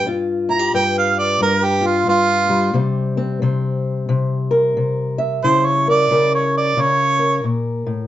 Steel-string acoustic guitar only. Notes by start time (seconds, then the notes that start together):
0.06 G2 F4
0.49 E4
0.59 G4
0.74 G2 B4
1.41 G2
1.81 F4
2.07 G2
2.49 G3
2.73 C3 G3 C4
3.17 C4
3.42 C3 C4
4.09 C3
4.51 A#4
4.77 C3
5.18 E5
5.44 C#3 E4
5.88 A#4
6.11 C#3 A#4
6.77 C#3
7.19 A#4
7.44 A#2
7.86 A2